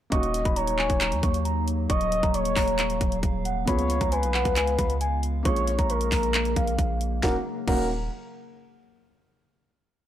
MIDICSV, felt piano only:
0, 0, Header, 1, 2, 480
1, 0, Start_track
1, 0, Key_signature, -6, "minor"
1, 0, Tempo, 444444
1, 129, Time_signature, 4, 2, 24, 8
1, 10877, End_track
2, 0, Start_track
2, 0, Title_t, "Felt piano"
2, 0, Program_c, 0, 0
2, 107, Note_on_c, 0, 58, 68
2, 123, Note_on_c, 0, 61, 63
2, 140, Note_on_c, 0, 63, 62
2, 156, Note_on_c, 0, 66, 78
2, 364, Control_c, 0, 64, 127
2, 3915, Note_off_c, 0, 58, 0
2, 3923, Note_off_c, 0, 61, 0
2, 3931, Note_off_c, 0, 63, 0
2, 3939, Note_off_c, 0, 66, 0
2, 3946, Note_on_c, 0, 59, 75
2, 3962, Note_on_c, 0, 61, 61
2, 3978, Note_on_c, 0, 65, 64
2, 3980, Control_c, 0, 64, 0
2, 3995, Note_on_c, 0, 68, 81
2, 4159, Control_c, 0, 64, 127
2, 5839, Note_off_c, 0, 59, 0
2, 5847, Note_off_c, 0, 61, 0
2, 5855, Note_off_c, 0, 65, 0
2, 5862, Note_on_c, 0, 58, 68
2, 5864, Note_off_c, 0, 68, 0
2, 5879, Note_on_c, 0, 61, 62
2, 5895, Note_on_c, 0, 65, 67
2, 5903, Control_c, 0, 64, 0
2, 5911, Note_on_c, 0, 68, 74
2, 6089, Control_c, 0, 64, 127
2, 7757, Note_off_c, 0, 58, 0
2, 7765, Note_off_c, 0, 61, 0
2, 7774, Note_off_c, 0, 65, 0
2, 7782, Note_off_c, 0, 68, 0
2, 7809, Note_on_c, 0, 58, 89
2, 7809, Note_on_c, 0, 63, 78
2, 7810, Note_on_c, 0, 61, 80
2, 7810, Note_on_c, 0, 66, 97
2, 7823, Control_c, 0, 64, 0
2, 7943, Note_off_c, 0, 58, 0
2, 7943, Note_off_c, 0, 61, 0
2, 7943, Note_off_c, 0, 63, 0
2, 7943, Note_off_c, 0, 66, 0
2, 8290, Note_on_c, 0, 63, 81
2, 8290, Note_on_c, 0, 66, 94
2, 8291, Note_on_c, 0, 58, 84
2, 8291, Note_on_c, 0, 61, 82
2, 8513, Note_off_c, 0, 58, 0
2, 8513, Note_off_c, 0, 61, 0
2, 8513, Note_off_c, 0, 63, 0
2, 8513, Note_off_c, 0, 66, 0
2, 10877, End_track
0, 0, End_of_file